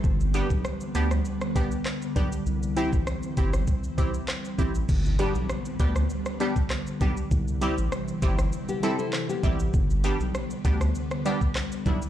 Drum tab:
CC |----------------|----------------|x---------------|----------------|
HH |--x---x---x---x-|--x---x---x---x-|--x---x---x---x-|--x---x---x---x-|
SH |xxxxxxxxxxxxxxxx|xxxxxxxxxxxxxxxx|xxxxxxxxxxxxxxxx|xxxxxxxxxxxxxxxx|
CP |------------x---|------------x---|------------x---|------------x---|
SD |----r--r-r--r---|----r--r----r---|----r--r-r--r---|----r--r----r---|
BD |o--o------o---o-|---o--o-o-o---o-|o-----o----o--o-|o-----o-------o-|

CC |----------------|
HH |--x---x---x---x-|
SH |xxxxxxxxxxxxxxxx|
CP |------------x---|
SD |----r--r-r--r---|
BD |o-----o----o--o-|